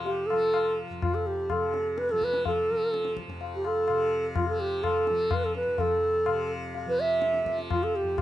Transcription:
Already playing: F2 C3 F3
0.04 G4, tabla tin
0.26 A4, tabla na
0.31 F3
0.54 tabla na
0.90 F2
1.02 F4, tabla na, tabla ge
1.15 A4
1.27 G4
1.49 C3 A4, tabla na, tabla ge
1.74 tabla te
1.98 B4, tabla te
2.09 F3 A4, tabla te
2.22 B4, tabla ke
2.33 tabla te
2.45 A4, tabla tin, tabla ge
2.70 F3
2.94 tabla te
3.05 tabla te
3.17 tabla ke
3.28 F2, tabla te
3.41 tabla tin
3.56 G4
3.65 A4, tabla na
3.88 C3, tabla na
4.36 F4, tabla na, tabla ge
4.49 F3 A4
4.60 G4
4.83 A4, tabla na, tabla ge
5.07 F3, tabla te
5.31 B4, tabla na, tabla ge
5.44 A4
5.55 B4, tabla te
5.67 F2
5.78 A4, tabla tin, tabla ge
6.26 C3, tabla na
6.75 tabla tin
6.86 F3 B4
7.00 E5
7.22 tabla te
7.34 tabla te
7.43 F3, tabla ke
7.59 tabla te
7.71 F4, tabla na, tabla ge
7.83 A4
7.96 G4
8.03 F2
8.18 A4, tabla na, tabla ge

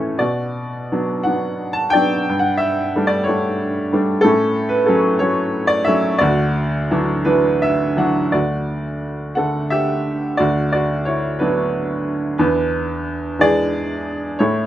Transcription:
Already playing: A2 E3 A3 C#4 E4 A4 B4 C#5
0.18 B2 F#4 D5
0.92 F#3 B3 D4
1.23 F#3 B3 D4 F#5
1.73 A5
1.90 D5 G5
1.95 F#3 B3 D4
2.29 G2
2.39 F#5
2.57 E5
2.96 G3 A3 D4
3.07 D5
3.24 C#5
3.28 G3 A3 D4
3.93 G3 A3 D4
4.21 A2 A4
4.26 C#4
4.69 B4
4.86 F#3 A3 C#4 A4
5.19 F#3 A3 C#4 C#5
5.67 D5
5.85 F#3 A3 C#4 E5
6.18 D2 D5
6.23 F#4
6.90 E3 F#3 D4
7.25 E3 F#3 D4 B4
7.62 E5
7.97 E3 F#3 D4 F#5
8.32 D2 F#4 D5
9.35 D3 A3 D4 A4 F#5
9.70 G4 E5
10.37 D2 F#4 D5
10.72 F#4 D5
11.05 E4 C#5
11.39 F#3 B3 D4 B4
12.38 E2 D4 B4
13.39 E3 G#3 D4 G#4 D5
14.39 A2 E4 C#5

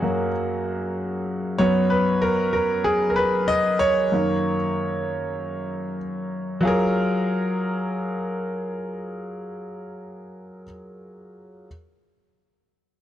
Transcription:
Already playing: F#2 A#3 F4 F#4 G#4
0.02 F#2 F#3 A#3
1.58 F#2 F#3 B3 C#5
1.90 B4
2.22 A#4
2.53 A#4
2.84 G#4
3.10 A#4
3.16 B4
3.48 D#5
3.79 C#5
4.12 F#2 D#3 A#3
6.61 F#3 F4
6.65 G#4 A#4

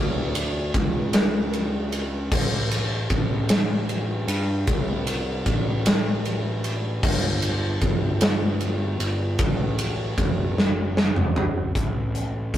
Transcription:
Already playing: D2
0.35 ride
0.74 C#2, kick, ride
1.13 snare, ride
1.53 ride
1.92 ride
2.32 A1, kick, crash
2.71 ride
3.10 A1, kick, ride
3.49 snare, ride
3.89 ride
4.28 G2, ride
4.67 C2, kick, ride
5.07 ride
5.46 A1, kick, ride
5.86 snare, ride
6.25 ride
6.64 ride
7.03 G1, kick, crash
7.42 ride
7.81 G1, kick, ride
8.21 snare, ride
8.61 ride
8.99 G1, ride
9.39 A1, kick, ride
9.79 ride
10.18 F#1, kick, ride
10.58 snare
10.97 snare
11.16 mid tom
11.36 floor tom
11.75 A1, kick, closed hi-hat
12.15 closed hi-hat
12.54 kick, closed hi-hat

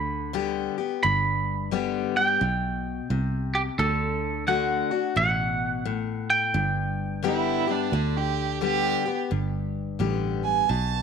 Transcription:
Already playing: D2 D3 B5
0.33 D3 G3 B3 G4
0.78 B3 G4
1.03 G1 G2 B5
1.71 D3 G3 B3 G4
2.16 B3 G4 G5
2.41 B1 B2
3.10 C2 C3
3.55 G4
3.79 D2 D3 A4
4.47 D3 A3 D4 F#4 F#5
4.91 D4 F#4
5.16 A1 B2 F#5
5.85 A2
6.30 G5
6.54 G1 G2
7.23 D3 G3 B3 E4 G4
7.67 B3 D4 G4
7.92 D2 D3
8.17 G4
8.61 D3 G3 B3 G4
9.06 B3 G4
9.31 G1 G2
9.99 A1 D3 G3 B3 G4
10.44 B3 G#5
10.69 B1 B2 A5

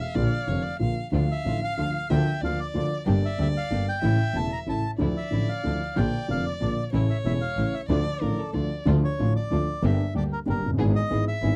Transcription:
Already playing: E5
0.01 F5
0.15 A#1 A#2 D3 F3 A#3 F4 D5
0.47 F1 F2 D3 F3 A#3 F4 C#5
0.63 D5
0.79 A#1 A#2 D3 F3 A#3 F4 F5
1.12 D2 D3 F3 A3 D4 F4 F5
1.32 E5
1.45 A1 A2 D3 F3 A3 D4 F4
1.64 F5
1.77 D2 D3 F3 A3 D4 F4
2.10 D2 D3 F3 A#3 D4 F4 E5 G5
2.42 D2 D3 F3 A#3 D4 F4 D5 F5
2.60 D5
2.74 D2 D3 F3 A#3 D4 F4 D5
3.06 G1 G2 D3 G3 A#3 D4 G4 D5
3.25 E5
3.39 D2 D3 G3 A#3 D4 G4 E5
3.57 F5
3.70 G1 G2 D3 G3 A#3 D4 G4
3.89 G5
4.02 A1 A2 C#3 E3 A3 C#4 E4 E5
4.33 E1 E2 C#3 E3 A3 C#4 E4 A5
4.53 A#5
4.66 A1 A2 C#3 E3 A3 C#4 E4 A5
4.98 D2 D3 F3 A3 D4 E4 D5
5.17 E5
5.30 A1 A2 D3 F3 A3 D4 E4
5.49 F5
5.63 D2 D3 F3 A3 D4 E4
5.96 A#1 A#2 D3 F3 A#3 D4 F4 D5 G5
6.28 F1 F2 D3 F3 A#3 D4 F4 F5
6.46 D5
6.61 A#1 A#2 D3 F3 A#3 D4 F4 D5
6.93 A1 A2 C#3 E3 A3 C#4 E4 C#5
7.10 E5
7.25 E1 E2 C#3 E3 A3 C#4 E4 E5
7.41 F5
7.57 A1 A2 C#3 E3 A3 C#4 E4
7.74 E5
7.89 D2 D3 F3 A3 D4 F4 D5
8.21 A1 A2 D3 F3 A3 D4 F4 A#4
8.39 A4
8.54 D2 D3 F3 A3 D4 F4 D5
8.85 D2 D3 F3 A3 D4 F4
9.04 C#5
9.19 A1 A2 D3 F3 A3 D4 F4
9.36 D5
9.51 D2 D3 F3 A3 D4 F4
9.83 G1 G2 D3 G3 A#3 D4 G4 E5
10.14 D2 D3 G3 A#3 D4 G4 D5
10.33 A#4
10.46 G1 G2 D3 G3 A#3 D4 G4 A#4
10.63 F1 F#1
10.70 F#1 G1
10.78 G#1 G#2 E3 G#3 B3 E4 G#4
10.96 D#5
11.10 G#1 G#2 E3 G#3 B3 E4 G#4
11.28 E5
11.42 G#1 G#2 E3 G#3 B3 E4 G#4

